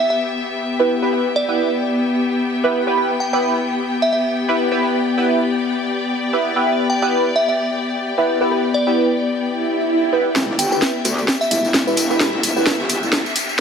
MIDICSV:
0, 0, Header, 1, 8, 480
1, 0, Start_track
1, 0, Key_signature, 1, "minor"
1, 0, Tempo, 461538
1, 1172, Time_signature, 4, 2, 24, 8
1, 14149, End_track
2, 0, Start_track
2, 0, Title_t, "Synth bell"
2, 0, Program_c, 0, 98
2, 106, Note_on_c, 0, 76, 67
2, 174, Note_off_c, 0, 76, 0
2, 1413, Note_on_c, 0, 74, 86
2, 1893, Note_off_c, 0, 74, 0
2, 3330, Note_on_c, 0, 79, 81
2, 3416, Note_off_c, 0, 79, 0
2, 3464, Note_on_c, 0, 79, 66
2, 3533, Note_off_c, 0, 79, 0
2, 4183, Note_on_c, 0, 76, 80
2, 4252, Note_off_c, 0, 76, 0
2, 4291, Note_on_c, 0, 76, 70
2, 4376, Note_off_c, 0, 76, 0
2, 7172, Note_on_c, 0, 79, 84
2, 7257, Note_off_c, 0, 79, 0
2, 7304, Note_on_c, 0, 79, 67
2, 7373, Note_off_c, 0, 79, 0
2, 7651, Note_on_c, 0, 76, 82
2, 7736, Note_off_c, 0, 76, 0
2, 7785, Note_on_c, 0, 76, 66
2, 7853, Note_off_c, 0, 76, 0
2, 9093, Note_on_c, 0, 74, 86
2, 9572, Note_off_c, 0, 74, 0
2, 11013, Note_on_c, 0, 79, 84
2, 11097, Note_off_c, 0, 79, 0
2, 11146, Note_on_c, 0, 79, 71
2, 11214, Note_off_c, 0, 79, 0
2, 11865, Note_on_c, 0, 76, 84
2, 11934, Note_off_c, 0, 76, 0
2, 11970, Note_on_c, 0, 76, 73
2, 12056, Note_off_c, 0, 76, 0
2, 14149, End_track
3, 0, Start_track
3, 0, Title_t, "String section"
3, 0, Program_c, 1, 48
3, 0, Note_on_c, 1, 59, 84
3, 0, Note_on_c, 1, 67, 67
3, 0, Note_on_c, 1, 76, 71
3, 0, Note_on_c, 1, 79, 68
3, 4700, Note_on_c, 1, 74, 71
3, 4842, Note_off_c, 1, 76, 0
3, 11108, Note_on_c, 1, 76, 72
3, 11690, Note_off_c, 1, 74, 0
3, 14149, Note_off_c, 1, 59, 0
3, 14149, Note_off_c, 1, 67, 0
3, 14149, Note_off_c, 1, 76, 0
3, 14149, Note_off_c, 1, 79, 0
3, 14149, End_track
4, 0, Start_track
4, 0, Title_t, "Synth stab"
4, 0, Program_c, 2, 62
4, 826, Note_on_c, 2, 59, 90
4, 826, Note_on_c, 2, 64, 80
4, 826, Note_on_c, 2, 67, 79
4, 826, Note_on_c, 2, 71, 95
4, 1025, Note_off_c, 2, 59, 0
4, 1025, Note_off_c, 2, 64, 0
4, 1025, Note_off_c, 2, 67, 0
4, 1025, Note_off_c, 2, 71, 0
4, 1065, Note_on_c, 2, 59, 97
4, 1065, Note_on_c, 2, 64, 85
4, 1065, Note_on_c, 2, 67, 89
4, 1065, Note_on_c, 2, 71, 102
4, 1156, Note_off_c, 2, 59, 0
4, 1156, Note_off_c, 2, 64, 0
4, 1156, Note_off_c, 2, 67, 0
4, 1156, Note_off_c, 2, 71, 0
4, 1173, Note_on_c, 2, 59, 72
4, 1173, Note_on_c, 2, 64, 66
4, 1173, Note_on_c, 2, 67, 68
4, 1173, Note_on_c, 2, 71, 81
4, 1321, Note_off_c, 2, 59, 0
4, 1321, Note_off_c, 2, 64, 0
4, 1321, Note_off_c, 2, 67, 0
4, 1321, Note_off_c, 2, 71, 0
4, 1545, Note_on_c, 2, 59, 94
4, 1545, Note_on_c, 2, 64, 87
4, 1545, Note_on_c, 2, 67, 85
4, 1546, Note_on_c, 2, 71, 104
4, 1763, Note_off_c, 2, 59, 0
4, 1763, Note_off_c, 2, 64, 0
4, 1763, Note_off_c, 2, 67, 0
4, 1763, Note_off_c, 2, 71, 0
4, 2744, Note_on_c, 2, 59, 91
4, 2744, Note_on_c, 2, 64, 83
4, 2744, Note_on_c, 2, 67, 82
4, 2744, Note_on_c, 2, 71, 100
4, 2944, Note_off_c, 2, 59, 0
4, 2944, Note_off_c, 2, 64, 0
4, 2944, Note_off_c, 2, 67, 0
4, 2944, Note_off_c, 2, 71, 0
4, 2984, Note_on_c, 2, 59, 92
4, 2984, Note_on_c, 2, 64, 86
4, 2984, Note_on_c, 2, 67, 87
4, 2984, Note_on_c, 2, 71, 106
4, 3075, Note_off_c, 2, 59, 0
4, 3075, Note_off_c, 2, 64, 0
4, 3075, Note_off_c, 2, 67, 0
4, 3076, Note_off_c, 2, 71, 0
4, 3092, Note_on_c, 2, 59, 72
4, 3092, Note_on_c, 2, 64, 65
4, 3092, Note_on_c, 2, 67, 66
4, 3092, Note_on_c, 2, 71, 82
4, 3240, Note_off_c, 2, 59, 0
4, 3240, Note_off_c, 2, 64, 0
4, 3240, Note_off_c, 2, 67, 0
4, 3240, Note_off_c, 2, 71, 0
4, 3464, Note_on_c, 2, 59, 93
4, 3464, Note_on_c, 2, 64, 86
4, 3464, Note_on_c, 2, 67, 85
4, 3464, Note_on_c, 2, 71, 105
4, 3682, Note_off_c, 2, 59, 0
4, 3682, Note_off_c, 2, 64, 0
4, 3682, Note_off_c, 2, 67, 0
4, 3682, Note_off_c, 2, 71, 0
4, 4665, Note_on_c, 2, 59, 90
4, 4665, Note_on_c, 2, 64, 81
4, 4665, Note_on_c, 2, 67, 85
4, 4665, Note_on_c, 2, 71, 102
4, 4865, Note_off_c, 2, 59, 0
4, 4865, Note_off_c, 2, 64, 0
4, 4865, Note_off_c, 2, 67, 0
4, 4865, Note_off_c, 2, 71, 0
4, 4904, Note_on_c, 2, 59, 99
4, 4904, Note_on_c, 2, 64, 88
4, 4904, Note_on_c, 2, 67, 88
4, 4904, Note_on_c, 2, 71, 103
4, 4995, Note_off_c, 2, 64, 0
4, 4995, Note_off_c, 2, 67, 0
4, 4995, Note_off_c, 2, 71, 0
4, 4996, Note_off_c, 2, 59, 0
4, 5012, Note_on_c, 2, 59, 72
4, 5012, Note_on_c, 2, 64, 65
4, 5012, Note_on_c, 2, 67, 66
4, 5012, Note_on_c, 2, 71, 80
4, 5160, Note_off_c, 2, 59, 0
4, 5160, Note_off_c, 2, 64, 0
4, 5160, Note_off_c, 2, 67, 0
4, 5160, Note_off_c, 2, 71, 0
4, 5383, Note_on_c, 2, 59, 97
4, 5383, Note_on_c, 2, 71, 104
4, 5384, Note_on_c, 2, 64, 85
4, 5384, Note_on_c, 2, 67, 85
4, 5602, Note_off_c, 2, 59, 0
4, 5602, Note_off_c, 2, 64, 0
4, 5602, Note_off_c, 2, 67, 0
4, 5602, Note_off_c, 2, 71, 0
4, 6584, Note_on_c, 2, 59, 89
4, 6584, Note_on_c, 2, 64, 80
4, 6584, Note_on_c, 2, 67, 86
4, 6584, Note_on_c, 2, 71, 101
4, 6784, Note_off_c, 2, 59, 0
4, 6784, Note_off_c, 2, 64, 0
4, 6784, Note_off_c, 2, 67, 0
4, 6784, Note_off_c, 2, 71, 0
4, 6823, Note_on_c, 2, 59, 93
4, 6823, Note_on_c, 2, 64, 88
4, 6823, Note_on_c, 2, 67, 87
4, 6823, Note_on_c, 2, 71, 108
4, 6915, Note_off_c, 2, 59, 0
4, 6915, Note_off_c, 2, 64, 0
4, 6915, Note_off_c, 2, 67, 0
4, 6915, Note_off_c, 2, 71, 0
4, 6931, Note_on_c, 2, 59, 72
4, 6931, Note_on_c, 2, 64, 67
4, 6931, Note_on_c, 2, 67, 65
4, 6931, Note_on_c, 2, 71, 79
4, 7079, Note_off_c, 2, 59, 0
4, 7079, Note_off_c, 2, 64, 0
4, 7079, Note_off_c, 2, 67, 0
4, 7079, Note_off_c, 2, 71, 0
4, 7304, Note_on_c, 2, 59, 94
4, 7304, Note_on_c, 2, 64, 86
4, 7304, Note_on_c, 2, 67, 84
4, 7304, Note_on_c, 2, 71, 104
4, 7522, Note_off_c, 2, 59, 0
4, 7522, Note_off_c, 2, 64, 0
4, 7522, Note_off_c, 2, 67, 0
4, 7522, Note_off_c, 2, 71, 0
4, 8504, Note_on_c, 2, 59, 89
4, 8504, Note_on_c, 2, 71, 102
4, 8505, Note_on_c, 2, 64, 85
4, 8505, Note_on_c, 2, 67, 84
4, 8704, Note_off_c, 2, 59, 0
4, 8704, Note_off_c, 2, 71, 0
4, 8705, Note_off_c, 2, 64, 0
4, 8705, Note_off_c, 2, 67, 0
4, 8744, Note_on_c, 2, 59, 97
4, 8744, Note_on_c, 2, 64, 90
4, 8744, Note_on_c, 2, 67, 89
4, 8745, Note_on_c, 2, 71, 104
4, 8836, Note_off_c, 2, 59, 0
4, 8836, Note_off_c, 2, 64, 0
4, 8836, Note_off_c, 2, 67, 0
4, 8836, Note_off_c, 2, 71, 0
4, 8852, Note_on_c, 2, 64, 68
4, 8853, Note_on_c, 2, 59, 73
4, 8853, Note_on_c, 2, 67, 68
4, 8853, Note_on_c, 2, 71, 84
4, 9000, Note_off_c, 2, 59, 0
4, 9000, Note_off_c, 2, 64, 0
4, 9000, Note_off_c, 2, 67, 0
4, 9000, Note_off_c, 2, 71, 0
4, 9224, Note_on_c, 2, 59, 94
4, 9224, Note_on_c, 2, 64, 89
4, 9224, Note_on_c, 2, 67, 87
4, 9224, Note_on_c, 2, 71, 109
4, 9442, Note_off_c, 2, 59, 0
4, 9442, Note_off_c, 2, 64, 0
4, 9442, Note_off_c, 2, 67, 0
4, 9442, Note_off_c, 2, 71, 0
4, 10531, Note_on_c, 2, 59, 89
4, 10532, Note_on_c, 2, 64, 83
4, 10532, Note_on_c, 2, 67, 86
4, 10532, Note_on_c, 2, 71, 101
4, 10739, Note_off_c, 2, 59, 0
4, 10739, Note_off_c, 2, 64, 0
4, 10739, Note_off_c, 2, 67, 0
4, 10739, Note_off_c, 2, 71, 0
4, 10771, Note_on_c, 2, 59, 74
4, 10772, Note_on_c, 2, 64, 69
4, 10772, Note_on_c, 2, 67, 68
4, 10772, Note_on_c, 2, 71, 81
4, 10920, Note_off_c, 2, 59, 0
4, 10920, Note_off_c, 2, 64, 0
4, 10920, Note_off_c, 2, 67, 0
4, 10920, Note_off_c, 2, 71, 0
4, 11145, Note_on_c, 2, 59, 94
4, 11145, Note_on_c, 2, 64, 89
4, 11145, Note_on_c, 2, 67, 87
4, 11145, Note_on_c, 2, 71, 109
4, 11362, Note_off_c, 2, 59, 0
4, 11362, Note_off_c, 2, 64, 0
4, 11362, Note_off_c, 2, 67, 0
4, 11362, Note_off_c, 2, 71, 0
4, 12344, Note_on_c, 2, 59, 91
4, 12344, Note_on_c, 2, 64, 82
4, 12344, Note_on_c, 2, 67, 86
4, 12344, Note_on_c, 2, 71, 98
4, 12544, Note_off_c, 2, 59, 0
4, 12544, Note_off_c, 2, 64, 0
4, 12544, Note_off_c, 2, 67, 0
4, 12544, Note_off_c, 2, 71, 0
4, 12584, Note_on_c, 2, 59, 99
4, 12584, Note_on_c, 2, 64, 89
4, 12584, Note_on_c, 2, 67, 88
4, 12584, Note_on_c, 2, 71, 112
4, 12675, Note_off_c, 2, 59, 0
4, 12675, Note_off_c, 2, 71, 0
4, 12676, Note_off_c, 2, 64, 0
4, 12676, Note_off_c, 2, 67, 0
4, 12691, Note_on_c, 2, 67, 69
4, 12692, Note_on_c, 2, 59, 75
4, 12692, Note_on_c, 2, 64, 69
4, 12692, Note_on_c, 2, 71, 80
4, 12840, Note_off_c, 2, 59, 0
4, 12840, Note_off_c, 2, 64, 0
4, 12840, Note_off_c, 2, 67, 0
4, 12840, Note_off_c, 2, 71, 0
4, 13063, Note_on_c, 2, 59, 99
4, 13063, Note_on_c, 2, 64, 87
4, 13063, Note_on_c, 2, 67, 89
4, 13063, Note_on_c, 2, 71, 109
4, 13281, Note_off_c, 2, 59, 0
4, 13281, Note_off_c, 2, 64, 0
4, 13281, Note_off_c, 2, 71, 0
4, 13282, Note_off_c, 2, 67, 0
4, 14149, End_track
5, 0, Start_track
5, 0, Title_t, "Wobble bass"
5, 0, Program_c, 3, 39
5, 10772, Note_on_c, 3, 28, 96
5, 10995, Note_off_c, 3, 28, 0
5, 11011, Note_on_c, 3, 31, 96
5, 11234, Note_off_c, 3, 31, 0
5, 11491, Note_on_c, 3, 38, 95
5, 11714, Note_off_c, 3, 38, 0
5, 11971, Note_on_c, 3, 28, 99
5, 12323, Note_off_c, 3, 28, 0
5, 12345, Note_on_c, 3, 28, 92
5, 12803, Note_off_c, 3, 28, 0
5, 12825, Note_on_c, 3, 28, 95
5, 13043, Note_off_c, 3, 28, 0
5, 13065, Note_on_c, 3, 28, 95
5, 13283, Note_off_c, 3, 28, 0
5, 13305, Note_on_c, 3, 31, 92
5, 13523, Note_off_c, 3, 31, 0
5, 13544, Note_on_c, 3, 28, 92
5, 13763, Note_off_c, 3, 28, 0
5, 14149, End_track
6, 0, Start_track
6, 0, Title_t, "Riser"
6, 0, Program_c, 4, 103
6, 10771, Note_on_c, 4, 60, 78
6, 14149, Note_off_c, 4, 60, 0
6, 14149, End_track
7, 0, Start_track
7, 0, Title_t, "Swell"
7, 0, Program_c, 5, 103
7, 9811, Note_on_c, 5, 60, 72
7, 10771, Note_off_c, 5, 60, 0
7, 14149, End_track
8, 0, Start_track
8, 0, Title_t, "Drums"
8, 10769, Note_on_c, 9, 51, 94
8, 10773, Note_on_c, 9, 38, 49
8, 10779, Note_on_c, 9, 54, 45
8, 10873, Note_off_c, 9, 51, 0
8, 10877, Note_off_c, 9, 38, 0
8, 10883, Note_off_c, 9, 54, 0
8, 11009, Note_on_c, 9, 51, 69
8, 11012, Note_on_c, 9, 46, 103
8, 11019, Note_on_c, 9, 54, 78
8, 11113, Note_off_c, 9, 51, 0
8, 11116, Note_off_c, 9, 46, 0
8, 11123, Note_off_c, 9, 54, 0
8, 11152, Note_on_c, 9, 54, 34
8, 11252, Note_on_c, 9, 38, 52
8, 11255, Note_on_c, 9, 51, 85
8, 11256, Note_off_c, 9, 38, 0
8, 11256, Note_off_c, 9, 54, 0
8, 11256, Note_on_c, 9, 38, 106
8, 11259, Note_on_c, 9, 54, 45
8, 11359, Note_off_c, 9, 51, 0
8, 11360, Note_off_c, 9, 38, 0
8, 11363, Note_off_c, 9, 54, 0
8, 11487, Note_on_c, 9, 51, 63
8, 11492, Note_on_c, 9, 46, 101
8, 11499, Note_on_c, 9, 54, 81
8, 11591, Note_off_c, 9, 51, 0
8, 11596, Note_off_c, 9, 46, 0
8, 11603, Note_off_c, 9, 54, 0
8, 11629, Note_on_c, 9, 51, 40
8, 11631, Note_on_c, 9, 54, 34
8, 11732, Note_on_c, 9, 38, 52
8, 11733, Note_off_c, 9, 51, 0
8, 11735, Note_off_c, 9, 54, 0
8, 11736, Note_on_c, 9, 51, 80
8, 11739, Note_on_c, 9, 54, 46
8, 11836, Note_off_c, 9, 38, 0
8, 11840, Note_off_c, 9, 51, 0
8, 11843, Note_off_c, 9, 54, 0
8, 11871, Note_on_c, 9, 54, 32
8, 11972, Note_on_c, 9, 46, 103
8, 11972, Note_on_c, 9, 51, 62
8, 11975, Note_off_c, 9, 54, 0
8, 11978, Note_on_c, 9, 54, 79
8, 12076, Note_off_c, 9, 46, 0
8, 12076, Note_off_c, 9, 51, 0
8, 12082, Note_off_c, 9, 54, 0
8, 12111, Note_on_c, 9, 54, 34
8, 12208, Note_on_c, 9, 38, 117
8, 12211, Note_on_c, 9, 51, 87
8, 12212, Note_off_c, 9, 38, 0
8, 12212, Note_on_c, 9, 38, 54
8, 12215, Note_off_c, 9, 54, 0
8, 12218, Note_on_c, 9, 54, 44
8, 12315, Note_off_c, 9, 51, 0
8, 12316, Note_off_c, 9, 38, 0
8, 12322, Note_off_c, 9, 54, 0
8, 12351, Note_on_c, 9, 54, 31
8, 12444, Note_on_c, 9, 51, 63
8, 12452, Note_on_c, 9, 46, 103
8, 12455, Note_off_c, 9, 54, 0
8, 12458, Note_on_c, 9, 54, 83
8, 12548, Note_off_c, 9, 51, 0
8, 12556, Note_off_c, 9, 46, 0
8, 12562, Note_off_c, 9, 54, 0
8, 12591, Note_on_c, 9, 54, 34
8, 12692, Note_on_c, 9, 38, 58
8, 12695, Note_off_c, 9, 54, 0
8, 12698, Note_on_c, 9, 54, 46
8, 12699, Note_on_c, 9, 51, 83
8, 12796, Note_off_c, 9, 38, 0
8, 12802, Note_off_c, 9, 54, 0
8, 12803, Note_off_c, 9, 51, 0
8, 12823, Note_on_c, 9, 51, 46
8, 12927, Note_off_c, 9, 51, 0
8, 12928, Note_on_c, 9, 51, 66
8, 12932, Note_on_c, 9, 46, 106
8, 12938, Note_on_c, 9, 54, 77
8, 13032, Note_off_c, 9, 51, 0
8, 13036, Note_off_c, 9, 46, 0
8, 13042, Note_off_c, 9, 54, 0
8, 13071, Note_on_c, 9, 54, 33
8, 13172, Note_on_c, 9, 38, 64
8, 13175, Note_off_c, 9, 54, 0
8, 13176, Note_off_c, 9, 38, 0
8, 13176, Note_on_c, 9, 38, 126
8, 13178, Note_on_c, 9, 54, 45
8, 13179, Note_on_c, 9, 51, 96
8, 13280, Note_off_c, 9, 38, 0
8, 13282, Note_off_c, 9, 54, 0
8, 13283, Note_off_c, 9, 51, 0
8, 13304, Note_on_c, 9, 38, 45
8, 13406, Note_on_c, 9, 51, 69
8, 13408, Note_off_c, 9, 38, 0
8, 13412, Note_on_c, 9, 46, 108
8, 13418, Note_on_c, 9, 54, 78
8, 13510, Note_off_c, 9, 51, 0
8, 13516, Note_off_c, 9, 46, 0
8, 13522, Note_off_c, 9, 54, 0
8, 13551, Note_on_c, 9, 54, 35
8, 13651, Note_on_c, 9, 38, 66
8, 13655, Note_off_c, 9, 54, 0
8, 13657, Note_on_c, 9, 51, 96
8, 13658, Note_on_c, 9, 54, 45
8, 13755, Note_off_c, 9, 38, 0
8, 13761, Note_off_c, 9, 51, 0
8, 13762, Note_off_c, 9, 54, 0
8, 13782, Note_on_c, 9, 38, 56
8, 13791, Note_on_c, 9, 54, 31
8, 13886, Note_off_c, 9, 38, 0
8, 13891, Note_on_c, 9, 46, 109
8, 13895, Note_off_c, 9, 54, 0
8, 13895, Note_on_c, 9, 51, 74
8, 13898, Note_on_c, 9, 54, 77
8, 13995, Note_off_c, 9, 46, 0
8, 13999, Note_off_c, 9, 51, 0
8, 14002, Note_off_c, 9, 54, 0
8, 14030, Note_on_c, 9, 54, 33
8, 14134, Note_off_c, 9, 54, 0
8, 14149, End_track
0, 0, End_of_file